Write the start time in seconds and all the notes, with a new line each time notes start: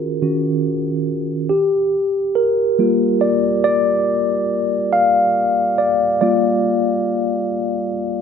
Already playing: D#3 C#4 F#4 A#4
0.22 D#3 C#4 F#4
1.49 G4
2.35 A#4
2.79 G3 A#3 F4
3.21 D5
3.64 D5
4.93 F5
5.78 D5
6.21 G3 A#3 F4 D5